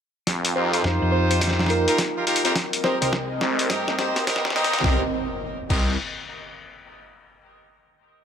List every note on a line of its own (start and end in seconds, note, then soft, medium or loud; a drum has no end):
0.27 0.54 F2 medium
0.27 2.54 D#4 medium
0.27 2.54 F4 medium
0.27 4.80 A#4 medium
0.27 kick loud
0.27 snare soft
0.27 closed hi-hat medium
0.27 riser medium
0.45 closed hi-hat medium
0.55 0.82 F2 medium
0.55 0.70 D#4 medium
0.55 0.69 F4 medium
0.55 0.69 G4 medium
0.55 0.70 A#4 medium
0.55 1.11 C5 loud
0.73 1.84 D#4 medium
0.73 1.84 F4 medium
0.73 1.84 G4 medium
0.73 1.84 C5 loud
0.73 closed hi-hat medium
0.84 0.99 F2 medium
0.84 kick medium
0.84 snare soft
1.02 1.85 F2 loud
1.12 1.24 C5 medium
1.30 1.37 C5 medium
1.30 closed hi-hat medium
1.41 kick loud
1.41 snare soft
1.41 closed hi-hat medium
1.47 snare soft
1.51 snare soft
1.59 snare soft
1.66 2.17 A#4 medium
1.66 snare medium
1.66 closed hi-hat soft
1.88 2.00 D#4 loud
1.88 2.00 F4 medium
1.88 2.00 G4 medium
1.88 2.00 A#4 loud
1.88 closed hi-hat medium
1.98 kick medium
1.98 snare medium
1.98 closed hi-hat medium
2.16 2.26 D#4 medium
2.16 2.26 F4 medium
2.16 2.26 G4 medium
2.16 2.26 A#4 medium
2.27 2.42 D#4 medium
2.27 2.42 F4 medium
2.27 2.42 G4 medium
2.27 2.42 A#4 loud
2.27 closed hi-hat medium
2.36 closed hi-hat medium
2.45 2.54 F2 medium
2.45 2.54 D#4 medium
2.45 2.54 F4 medium
2.45 2.54 G4 medium
2.45 2.55 A#4 loud
2.45 closed hi-hat medium
2.56 4.82 C4 medium
2.56 4.82 D#5 medium
2.56 kick loud
2.56 snare medium
2.56 closed hi-hat medium
2.73 closed hi-hat medium
2.84 2.99 C4 medium
2.84 2.99 D#4 medium
2.84 2.99 G4 medium
2.84 2.99 A#4 medium
2.84 2.96 C5 medium
2.84 snare medium
3.02 3.40 C2 medium
3.02 3.14 C4 medium
3.02 3.14 D#4 medium
3.02 3.14 G4 medium
3.02 3.14 A#4 medium
3.02 3.09 C5 medium
3.02 closed hi-hat medium
3.13 kick loud
3.13 snare medium
3.41 3.68 C2 loud
3.41 snare medium
3.59 closed hi-hat medium
3.70 4.14 G2 medium
3.70 3.96 C4 medium
3.70 3.96 D#4 medium
3.70 3.96 G4 medium
3.70 3.96 A#4 medium
3.70 kick loud
3.70 snare medium
3.70 closed hi-hat medium
3.88 snare medium
3.98 4.24 C4 medium
3.98 4.24 D#4 medium
3.98 4.24 G4 medium
3.98 4.24 C5 medium
3.98 snare loud
3.98 closed hi-hat soft
4.16 snare medium
4.16 closed hi-hat medium
4.27 4.46 C4 medium
4.27 4.45 D#4 medium
4.27 4.46 G4 medium
4.27 4.46 A#4 loud
4.27 kick loud
4.27 snare loud
4.27 closed hi-hat medium
4.36 snare medium
4.45 4.83 D#2 medium
4.45 snare medium
4.50 snare loud
4.56 4.83 C4 loud
4.56 4.83 D#4 medium
4.56 4.83 G4 medium
4.56 4.83 A#4 loud
4.56 snare loud
4.56 closed hi-hat medium
4.64 snare medium
4.64 closed hi-hat medium
4.73 snare medium
4.73 closed hi-hat medium
4.79 snare loud
4.84 5.03 C2 loud
4.84 5.03 C4 medium
4.84 5.03 D#4 medium
4.84 5.03 G4 medium
4.84 5.03 A#4 loud
4.84 kick loud
4.84 snare medium
4.84 impact medium
5.70 5.97 C2 loud
5.70 5.93 C4 medium
5.70 5.93 D#4 medium
5.70 5.93 G4 medium
5.70 5.93 A#4 loud
5.70 kick loud
5.70 crash medium